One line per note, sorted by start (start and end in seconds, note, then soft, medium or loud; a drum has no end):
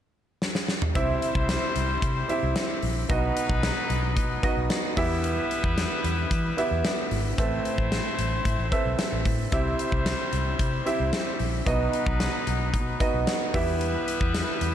0.42 snare medium
0.55 snare medium
0.68 snare medium
0.82 mid tom medium
0.95 1.16 C2 medium
0.95 1.72 C3 medium
0.95 2.79 G3 medium
0.95 1.65 C4 medium
0.95 2.79 C4 medium
0.95 1.66 E4 medium
0.95 2.79 E4 medium
0.95 1.66 G4 medium
0.95 2.79 C5 medium
0.95 1.66 E5 medium
0.95 kick loud
0.95 closed hi-hat medium
1.22 closed hi-hat medium
1.35 1.55 C2 medium
1.35 kick medium
1.49 snare loud
1.49 closed hi-hat medium
1.76 1.96 C2 medium
1.76 closed hi-hat medium
2.02 2.23 C3 medium
2.02 kick loud
2.02 closed hi-hat medium
2.29 2.82 C4 medium
2.29 2.82 E4 medium
2.29 2.82 G4 medium
2.29 2.82 E5 medium
2.29 closed hi-hat medium
2.43 2.53 C2 medium
2.56 snare loud
2.56 closed hi-hat medium
2.82 3.03 A#1 loud
2.82 open hi-hat medium
3.09 3.30 B1 loud
3.09 3.86 B2 medium
3.09 4.67 F#3 medium
3.09 3.80 B3 medium
3.09 4.67 B3 medium
3.09 3.80 D#4 medium
3.09 4.67 D#4 medium
3.09 3.80 F#4 medium
3.09 4.67 B4 medium
3.09 3.80 D#5 medium
3.09 kick loud
3.09 closed hi-hat medium
3.37 closed hi-hat medium
3.49 3.70 B1 medium
3.49 kick medium
3.63 snare loud
3.63 closed hi-hat medium
3.90 4.18 B1 medium
3.90 closed hi-hat medium
4.17 4.37 B2 loud
4.17 kick loud
4.17 closed hi-hat medium
4.43 4.95 B3 medium
4.43 4.96 D#4 medium
4.43 4.96 F#4 medium
4.43 4.96 D#5 medium
4.43 kick medium
4.43 closed hi-hat medium
4.57 4.67 B1 medium
4.70 snare loud
4.70 closed hi-hat medium
4.97 5.37 E2 medium
4.97 5.73 E3 medium
4.97 7.07 G3 medium
4.97 5.83 B3 medium
4.97 7.07 B3 medium
4.97 5.83 E4 medium
4.97 7.07 E4 medium
4.97 5.83 G4 medium
4.97 7.07 B4 medium
4.97 5.83 E5 loud
4.97 kick loud
4.97 open hi-hat medium
5.24 closed hi-hat medium
5.51 closed hi-hat medium
5.64 5.84 E2 medium
5.64 kick medium
5.78 snare loud
5.78 closed hi-hat medium
6.04 6.24 E2 medium
6.04 closed hi-hat medium
6.31 6.51 E3 medium
6.31 kick loud
6.31 closed hi-hat medium
6.57 7.10 B3 medium
6.57 7.10 E4 medium
6.57 7.11 G4 medium
6.57 7.11 E5 medium
6.57 closed hi-hat medium
6.71 6.81 E2 medium
6.85 snare loud
6.85 closed hi-hat medium
7.11 7.31 G#1 medium
7.11 open hi-hat medium
7.38 7.58 A1 medium
7.38 8.15 A2 medium
7.38 9.22 A3 medium
7.38 8.08 C4 medium
7.38 9.22 C4 medium
7.38 9.22 E4 medium
7.38 8.08 A4 medium
7.38 8.09 B4 medium
7.38 9.22 C5 medium
7.38 8.09 E5 medium
7.38 kick loud
7.38 closed hi-hat medium
7.65 closed hi-hat medium
7.78 7.98 A1 medium
7.78 kick medium
7.92 snare loud
7.92 closed hi-hat medium
8.19 8.39 A1 medium
8.19 closed hi-hat medium
8.45 8.55 A2 medium
8.45 kick medium
8.45 closed hi-hat medium
8.59 8.69 A1 medium
8.72 9.25 C4 medium
8.72 9.25 A4 medium
8.72 9.25 B4 medium
8.72 9.25 E5 medium
8.72 kick medium
8.72 closed hi-hat medium
8.86 8.96 B1 medium
8.99 snare loud
8.99 closed hi-hat medium
9.12 9.22 A1 medium
9.25 9.46 A2 medium
9.25 kick medium
9.25 open hi-hat medium
9.52 9.73 C2 medium
9.52 10.29 C3 medium
9.52 11.36 G3 medium
9.52 10.22 C4 medium
9.52 11.36 C4 medium
9.52 10.23 E4 medium
9.52 11.36 E4 medium
9.52 10.23 G4 medium
9.52 11.36 C5 medium
9.52 10.23 E5 medium
9.52 kick loud
9.52 closed hi-hat medium
9.79 closed hi-hat medium
9.92 10.13 C2 medium
9.92 kick medium
10.06 snare loud
10.06 closed hi-hat medium
10.33 10.53 C2 medium
10.33 closed hi-hat medium
10.59 10.80 C3 loud
10.59 kick loud
10.59 closed hi-hat medium
10.86 11.39 C4 medium
10.86 11.39 E4 medium
10.86 11.39 G4 medium
10.86 11.39 E5 medium
10.86 closed hi-hat medium
11.00 11.10 C2 medium
11.13 snare loud
11.13 closed hi-hat medium
11.39 11.60 A#1 medium
11.39 open hi-hat medium
11.66 11.87 B1 medium
11.66 12.43 B2 medium
11.66 13.24 F#3 medium
11.66 12.37 B3 medium
11.66 13.24 B3 medium
11.66 13.24 D#4 medium
11.66 12.37 D#4 medium
11.66 12.37 F#4 medium
11.66 13.24 B4 medium
11.66 12.37 D#5 medium
11.66 kick loud
11.66 closed hi-hat medium
11.93 closed hi-hat medium
12.06 12.27 B1 medium
12.06 kick loud
12.20 snare loud
12.20 closed hi-hat medium
12.47 12.75 B1 medium
12.47 closed hi-hat medium
12.74 12.94 B2 loud
12.74 kick loud
12.74 closed hi-hat medium
13.00 13.52 B3 medium
13.00 13.53 D#4 medium
13.00 13.53 F#4 medium
13.00 13.54 D#5 medium
13.00 kick medium
13.00 closed hi-hat medium
13.14 13.24 B1 medium
13.27 snare loud
13.27 closed hi-hat medium
13.54 13.94 E2 medium
13.54 14.31 E3 medium
13.54 14.74 G3 medium
13.54 14.40 B3 medium
13.54 14.74 B3 medium
13.54 14.74 E4 medium
13.54 14.40 E4 medium
13.54 14.40 G4 medium
13.54 14.74 B4 medium
13.54 14.40 E5 medium
13.54 kick loud
13.54 open hi-hat medium
13.81 closed hi-hat medium
14.08 closed hi-hat medium
14.21 14.41 E2 medium
14.21 kick medium
14.35 snare loud
14.35 closed hi-hat medium
14.61 14.74 E2 medium
14.61 closed hi-hat medium